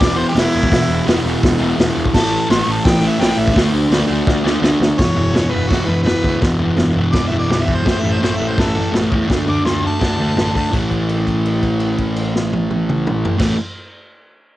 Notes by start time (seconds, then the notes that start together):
Already playing: E2 B2 E3
0.01 E1 D5, kick, snare, open hi-hat
0.14 E3 C5
0.19 B2
0.28 E2 G4
0.35 E1 B2 E3, snare, open hi-hat
0.40 E4
0.55 E1
0.63 kick
0.68 E1 E2 B2, kick, open hi-hat
0.73 E3, snare
0.89 E1
1.04 E1 E2 B2
1.08 E3, snare, open hi-hat
1.22 E1 E3
1.28 B2
1.43 E1, kick, snare, open hi-hat
1.59 E1 E3
1.64 B2
1.77 E1 E2 B2, snare, open hi-hat
1.82 E3
1.96 E1
2.05 kick
2.13 A1 A2 E3 A5, kick, snare, crash
2.17 A3
2.50 A1 A2 E3 C6, snare, open hi-hat
2.54 A3
2.65 A1 A3
2.70 E3 A5
2.85 A1 G5, kick, snare, open hi-hat
3.01 A3
3.06 E3 E5
3.18 A1 A2 E3 G5, open hi-hat
3.22 A3, snare
3.37 A1 E5
3.48 kick
3.52 D2 D3 A3, kick, open hi-hat
3.57 D4, snare
3.74 D2
3.88 D2 D3 A3, open hi-hat
3.93 D4, snare
4.07 D2 D4
4.12 A3
4.27 D2, kick, snare
4.44 D2 D4, snare
4.49 A3
4.60 D2 D3 A3, snare
4.65 D4
4.80 D2, snare
4.97 E1 E2 B2 C#5, kick, snare, floor tom
5.02 E3
5.15 E1 E3, floor tom
5.20 B2
5.33 E1 E2 B2, snare, floor tom
5.39 E3
5.50 E1 B2 E3 B4, floor tom
5.55 E2
5.68 E1 E2 B2 F#4, kick, floor tom
5.72 E3, snare
5.85 B2 E3 B4, floor tom
5.90 E2
6.03 E1 E2 B4, floor tom
6.07 B2 E3, snare
6.23 D2 E3, kick, floor tom
6.28 B2
6.41 E1 E2 B2, kick, snare, floor tom
6.45 E3
6.58 E1 E3, floor tom
6.64 B2
6.77 E1 E2 B2, snare, floor tom
6.82 E3
6.93 B2 E3, floor tom
6.98 E2
7.12 E1 E2 B2 D5, kick, snare, floor tom
7.17 E3
7.27 E3 E5
7.32 E1 E2 B2, floor tom
7.39 D5
7.47 B1 E2 B2, snare, floor tom
7.52 E3 D5
7.61 E5
7.66 E2 E3, kick, floor tom
7.71 B2
7.75 C5
7.84 A1 A2 E3, kick, snare, floor tom
7.88 A3 C5
8.00 A1 A3 E5
8.05 E3, floor tom
8.11 C5
8.20 A1 A2 E3 C5, snare, floor tom
8.25 A3
8.37 A1 A3 E5
8.41 A2 E3, floor tom
8.49 C5
8.57 A1 A2 E3 A4, kick, snare, floor tom
8.61 A3
8.75 E3 A3, floor tom
8.80 A2
8.91 A1 A2 E3, snare, floor tom
8.96 A3
9.10 E2 A3, kick, floor tom
9.15 E3
9.28 D2 D3 A3, kick, snare, floor tom
9.33 D4
9.46 D2 D4 D6, floor tom
9.50 A3
9.63 D2 D3 A3 C6, snare, floor tom
9.67 D4
9.82 A3 D4, floor tom
9.86 D3 A5
10.00 D2 D3 A3, kick, snare, floor tom
10.04 D4
10.16 D2 A3 D4, floor tom
10.21 D3
10.35 A1 D3 A3, snare, floor tom
10.40 D4
10.53 D3 D4 A5, kick, floor tom
10.57 A3
10.70 A1 A2 E3 A3, kick
10.74 crash
10.91 kick, crash
11.09 crash
11.27 kick, crash
11.45 crash
11.63 kick, crash
11.80 crash
11.98 kick, crash
12.16 crash
12.36 snare
12.53 high tom
12.71 high tom
12.89 mid tom
13.07 mid tom
13.25 floor tom
13.37 A1 A2 E3, kick, snare, crash
13.41 A3